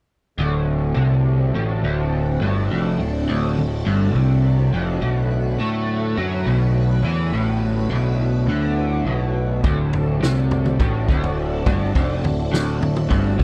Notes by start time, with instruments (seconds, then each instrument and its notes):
0.38 picked electric bass D1, harmonium D2 A2, overdriven electric guitar D2, string machine C4 D4 F#4 A4
0.96 picked electric bass C2, overdriven electric guitar C3
1.55 picked electric bass A1, overdriven electric guitar A2
1.83 picked electric bass D1, overdriven electric guitar D2
2.41 picked electric bass G1, overdriven electric guitar G2
2.71 picked electric bass F1, overdriven electric guitar F2
3.00 picked electric bass D1, overdriven electric guitar D2
3.29 picked electric bass D1, overdriven electric guitar D2
3.58 picked electric bass D1, overdriven electric guitar D2
3.86 picked electric bass G1, overdriven electric guitar G2
4.15 picked electric bass C2, overdriven electric guitar C3
4.73 picked electric bass F1, overdriven electric guitar F2
5.02 picked electric bass B1, overdriven electric guitar B2, string machine F#3 B3 F#4 B4
5.59 picked electric bass A2, overdriven electric guitar A3
6.17 picked electric bass F#2, overdriven electric guitar F#3
6.46 picked electric bass B1, overdriven electric guitar B2
7.03 picked electric bass E2, overdriven electric guitar E3
7.32 picked electric bass A1, overdriven electric guitar A2, string machine E4
7.90 picked electric bass B1, overdriven electric guitar B2
8.46 picked electric bass D2, overdriven electric guitar D3
9.05 picked electric bass B1, overdriven electric guitar B2
9.63 picked electric bass D1, harmonium D2 A2, overdriven electric guitar D2, string machine C4 D4 F#4 A4, kick, floor tom
9.93 floor tom
10.20 picked electric bass C2, overdriven electric guitar C3, snare
10.51 floor tom
10.66 mid tom
10.79 picked electric bass A1, overdriven electric guitar A2, kick, floor tom
11.08 picked electric bass D1, overdriven electric guitar D2, kick
11.24 floor tom
11.66 picked electric bass G1, overdriven electric guitar G2, kick, floor tom, mid tom
11.95 picked electric bass F1, overdriven electric guitar F2, kick, floor tom
12.24 picked electric bass D1, overdriven electric guitar D2, floor tom
12.52 picked electric bass D1, overdriven electric guitar D2, snare
12.80 picked electric bass D1, overdriven electric guitar D2, floor tom
12.96 mid tom
13.10 picked electric bass G1, overdriven electric guitar G2, kick, floor tom
13.39 picked electric bass C2, overdriven electric guitar C3, kick